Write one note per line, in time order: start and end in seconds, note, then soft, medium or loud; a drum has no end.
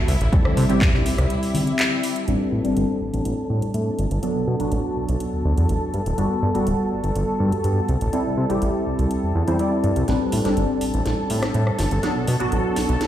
0.00 2.29 E4 medium
0.00 2.29 E5 medium
0.08 0.16 C2 medium
0.08 open hi-hat loud
0.08 tambourine medium
0.21 0.29 A1 medium
0.21 closed hi-hat medium
0.21 tambourine soft
0.32 0.67 G3 medium
0.32 0.67 C4 medium
0.32 0.67 E4 medium
0.32 0.67 A4 medium
0.32 kick loud
0.32 closed hi-hat medium
0.32 tambourine medium
0.32 high conga medium
0.45 0.55 C3 soft
0.45 cross-stick medium
0.45 tambourine soft
0.57 0.65 C3 loud
0.57 open hi-hat loud
0.57 tambourine medium
0.57 high conga medium
0.69 0.79 A1 soft
0.69 2.25 G3 medium
0.69 2.25 C4 medium
0.69 2.25 E4 medium
0.69 2.25 G4 loud
0.69 closed hi-hat medium
0.69 tambourine soft
0.81 0.90 A1 loud
0.81 kick loud
0.81 clap loud
0.81 closed hi-hat medium
0.94 clap soft
0.94 tambourine soft
0.94 low conga loud
1.06 1.16 C2 soft
1.06 open hi-hat loud
1.06 tambourine medium
1.18 1.26 C2 medium
1.18 cross-stick medium
1.18 closed hi-hat medium
1.18 tambourine soft
1.30 closed hi-hat medium
1.30 tambourine medium
1.43 open hi-hat medium
1.43 tambourine soft
1.54 open hi-hat loud
1.54 tambourine loud
1.54 high conga medium
1.67 closed hi-hat medium
1.67 tambourine soft
1.79 clap loud
1.79 closed hi-hat medium
1.79 tambourine medium
1.91 tambourine soft
2.03 open hi-hat loud
2.03 tambourine loud
2.16 closed hi-hat medium
2.16 tambourine soft
2.27 2.36 A1 medium
2.27 2.62 G3 medium
2.27 2.62 C4 medium
2.27 2.62 D4 medium
2.27 10.07 A4 medium
2.27 2.62 B4 medium
2.27 10.07 A5 medium
2.27 closed hi-hat medium
2.52 2.60 A2 loud
2.64 2.74 G1 soft
2.64 4.20 G3 medium
2.64 4.20 C4 medium
2.64 4.20 D4 medium
2.64 4.21 A4 loud
2.64 closed hi-hat medium
2.77 2.85 G1 loud
2.77 closed hi-hat medium
3.01 3.11 A1 soft
3.14 3.21 A1 medium
3.14 closed hi-hat medium
3.25 3.34 A1 medium
3.25 closed hi-hat medium
3.50 3.62 A2 loud
3.62 3.72 A2 soft
3.62 closed hi-hat medium
3.74 3.90 A2 loud
3.74 closed hi-hat medium
3.99 4.07 G1 medium
3.99 closed hi-hat medium
4.11 4.19 G1 medium
4.11 closed hi-hat medium
4.23 4.57 F#3 medium
4.23 4.57 B3 medium
4.23 4.57 D4 medium
4.23 4.57 A4 medium
4.23 closed hi-hat medium
4.36 4.45 B2 soft
4.47 4.56 B2 loud
4.59 4.69 A1 soft
4.59 5.92 F#3 medium
4.59 5.92 B3 medium
4.59 5.92 D4 medium
4.59 5.93 F#4 loud
4.59 closed hi-hat medium
4.72 4.80 A1 loud
4.72 closed hi-hat medium
4.96 5.06 B1 soft
5.09 5.17 B1 medium
5.09 closed hi-hat medium
5.20 closed hi-hat medium
5.33 5.43 D2 soft
5.45 5.53 D2 loud
5.57 5.65 E2 medium
5.57 closed hi-hat medium
5.69 5.78 A1 medium
5.69 closed hi-hat medium
5.94 6.02 G2 medium
5.94 closed hi-hat medium
6.06 6.14 D1 loud
6.06 closed hi-hat medium
6.18 6.26 G1 medium
6.18 6.52 G3 medium
6.18 6.52 B3 medium
6.18 6.52 F#4 medium
6.18 6.52 A4 medium
6.18 closed hi-hat medium
6.43 6.51 G2 loud
6.54 6.65 D1 soft
6.54 7.87 G3 medium
6.54 7.87 B3 medium
6.54 7.88 F#4 medium
6.54 7.88 A4 loud
6.54 closed hi-hat soft
6.67 6.75 D1 loud
6.67 closed hi-hat medium
6.91 7.01 G1 soft
7.04 7.12 G1 medium
7.04 closed hi-hat soft
7.16 7.24 G1 medium
7.16 closed hi-hat medium
7.40 7.52 G2 loud
7.52 7.62 G2 soft
7.52 closed hi-hat medium
7.64 7.81 G2 loud
7.64 closed hi-hat medium
7.89 7.97 C2 medium
7.89 closed hi-hat soft
8.01 8.09 A1 medium
8.01 closed hi-hat medium
8.13 8.47 G3 medium
8.13 8.47 C4 medium
8.13 8.47 E4 medium
8.13 8.47 A4 medium
8.13 closed hi-hat medium
8.26 8.35 C3 soft
8.38 8.46 C3 loud
8.49 8.60 A1 soft
8.49 9.45 G3 medium
8.49 9.45 C4 medium
8.49 9.45 E4 medium
8.49 9.46 G4 loud
8.49 closed hi-hat medium
8.62 8.70 A1 loud
8.62 closed hi-hat medium
8.86 8.96 C2 soft
8.99 9.07 C2 medium
8.99 closed hi-hat soft
9.11 closed hi-hat medium
9.23 9.33 E2 soft
9.35 9.43 E2 loud
9.47 9.56 E2 medium
9.47 9.56 G3 loud
9.47 9.57 C4 medium
9.47 9.57 E4 medium
9.47 9.57 C5 loud
9.47 closed hi-hat soft
9.59 10.05 G3 medium
9.59 10.05 C4 medium
9.59 10.06 E4 medium
9.59 10.06 D5 medium
9.59 closed hi-hat medium
9.84 9.92 G2 medium
9.84 closed hi-hat soft
9.96 10.04 C2 medium
9.96 closed hi-hat medium
10.08 10.17 A1 medium
10.08 10.42 G3 medium
10.08 10.42 C4 medium
10.08 10.42 D4 medium
10.08 13.07 A4 medium
10.08 10.43 B4 medium
10.08 13.07 A5 medium
10.08 snare soft
10.08 closed hi-hat medium
10.32 10.41 A2 loud
10.32 open hi-hat loud
10.44 10.55 G1 soft
10.44 12.00 G3 medium
10.44 12.00 C4 medium
10.44 12.01 D4 medium
10.44 12.01 A4 loud
10.44 snare soft
10.44 closed hi-hat medium
10.57 10.65 G1 loud
10.57 closed hi-hat medium
10.81 10.92 A1 soft
10.81 open hi-hat loud
10.94 11.02 A1 medium
10.94 closed hi-hat medium
11.06 11.14 A1 medium
11.06 snare medium
11.06 closed hi-hat medium
11.30 11.43 A2 loud
11.30 open hi-hat loud
11.43 11.52 A2 soft
11.43 cross-stick medium
11.43 snare soft
11.54 11.71 A2 loud
11.54 closed hi-hat medium
11.67 cross-stick medium
11.79 11.87 G1 medium
11.79 snare medium
11.79 open hi-hat loud
11.91 11.99 G1 medium
11.91 closed hi-hat medium
12.03 12.37 F#3 medium
12.03 12.37 B3 medium
12.03 12.37 D4 medium
12.03 12.38 A4 medium
12.03 snare medium
12.03 closed hi-hat medium
12.16 12.26 B2 soft
12.27 12.36 B2 loud
12.27 open hi-hat loud
12.39 12.50 A1 soft
12.39 13.07 F#3 medium
12.39 13.07 B3 medium
12.39 13.07 D4 medium
12.39 13.07 F#4 loud
12.39 closed hi-hat medium
12.52 12.61 A1 loud
12.52 closed hi-hat medium
12.76 12.87 B1 soft
12.76 snare medium
12.76 open hi-hat loud
12.89 12.97 B1 medium
12.89 closed hi-hat medium
13.01 snare medium
13.01 closed hi-hat medium